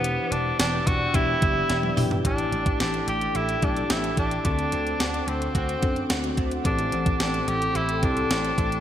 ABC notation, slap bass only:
X:1
M:4/4
L:1/8
Q:1/4=109
K:Ador
V:1 name="Slap bass" clef=bass
E,,, E,,, E,,, E,,, E,,, F,,, E,,, E,,, | A,,, A,,, A,,, A,,, A,,, B,,, A,,, A,,, | D,, D,, D,, D,, D,, F,, D,, D,, | A,,, A,,, A,,, A,,, A,,, C,, A,,, A,,, |]